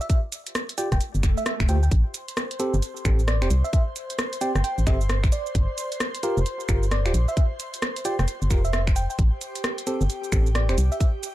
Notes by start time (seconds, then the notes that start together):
0.01 E5, shaker
0.09 E5, kick, closed hi-hat, shaker
0.32 closed hi-hat, shaker
0.47 closed hi-hat, shaker
0.55 cross-stick, closed hi-hat, shaker
0.69 closed hi-hat, shaker
0.78 F4 G4 D5 G5, closed hi-hat, shaker
0.92 F1 G5, kick, cross-stick, closed hi-hat, shaker
1.01 closed hi-hat, swell, shaker
1.15 G1, shaker
1.23 F1, finger snap, kick, closed hi-hat, shaker
1.37 E5, shaker
1.46 cross-stick, closed hi-hat, shaker
1.60 F1, finger snap, kick, shaker
1.69 D2 F4 G4 C5 G5, closed hi-hat, shaker
1.83 G5, shaker
1.91 A1 C5 C6, kick, closed hi-hat, shaker
2.14 closed hi-hat, shaker
2.28 closed hi-hat, shaker
2.37 cross-stick, closed hi-hat, shaker
2.51 closed hi-hat, shaker
2.60 C4 G4 A4, closed hi-hat, shaker
2.74 G1, shaker
2.82 closed hi-hat, shaker
2.97 shaker
3.05 A1 C4 G4 A4, finger snap, kick, closed hi-hat, shaker
3.19 shaker
3.28 D5, cross-stick, closed hi-hat, shaker
3.42 E1 C4 G4 C5, finger snap, shaker
3.51 C2, closed hi-hat, shaker
3.64 E5, shaker
3.73 E5, kick, closed hi-hat, shaker
3.96 closed hi-hat, shaker
4.10 closed hi-hat, shaker
4.19 cross-stick, closed hi-hat, shaker
4.33 closed hi-hat, shaker
4.41 C4 G4 D5 G5, closed hi-hat, shaker
4.55 G1 G5, cross-stick, shaker
4.64 G5, closed hi-hat, shaker
4.78 A1, shaker
4.87 G1 C4 G4 A4 E5, finger snap, kick, closed hi-hat, shaker
5.01 shaker
5.09 cross-stick, closed hi-hat, shaker
5.24 A1, finger snap, kick, shaker
5.32 D5, closed hi-hat, shaker
5.46 shaker
5.55 G1, kick, closed hi-hat, shaker
5.78 closed hi-hat, shaker
5.92 closed hi-hat, shaker
6.00 cross-stick, closed hi-hat, shaker
6.15 closed hi-hat, shaker
6.23 F4 G4 A#4, closed hi-hat, shaker
6.37 F1, shaker
6.46 closed hi-hat, shaker
6.60 shaker
6.69 G1 F4 G4 A#4, finger snap, kick, closed hi-hat, shaker
6.83 shaker
6.91 D5, cross-stick, closed hi-hat, shaker
7.05 D1 F4 G4 C5, finger snap, shaker
7.14 A#1, closed hi-hat, shaker
7.28 E5, shaker
7.37 E5, kick, closed hi-hat, shaker
7.60 closed hi-hat, shaker
7.74 closed hi-hat, shaker
7.82 cross-stick, closed hi-hat, shaker
7.96 closed hi-hat, shaker
8.05 F4 G4 D5 G5, closed hi-hat, shaker
8.19 F1 G5, cross-stick, shaker
8.28 closed hi-hat, shaker
8.42 G1, shaker
8.50 F1 F4 G4 A#4, finger snap, kick, closed hi-hat, shaker
8.65 E5, shaker
8.73 E5, cross-stick, closed hi-hat, shaker
8.87 finger snap, kick, shaker
8.96 G5, closed hi-hat, shaker
9.10 G5, shaker
9.19 A1 G4 G5, kick, closed hi-hat, shaker
9.41 closed hi-hat, shaker
9.55 closed hi-hat, shaker
9.64 cross-stick, closed hi-hat, shaker
9.78 closed hi-hat, shaker
9.87 C4 G4 A4, closed hi-hat, shaker
10.01 G1, shaker
10.10 closed hi-hat, shaker
10.24 shaker
10.32 A1 C4 G4 A4, finger snap, kick, closed hi-hat, shaker
10.46 shaker
10.55 D5, cross-stick, closed hi-hat, shaker
10.69 E1 C4 G4 C5, finger snap, shaker
10.78 C2, closed hi-hat, shaker
10.92 E5, shaker
11.00 E5, kick, closed hi-hat, shaker
11.23 closed hi-hat, shaker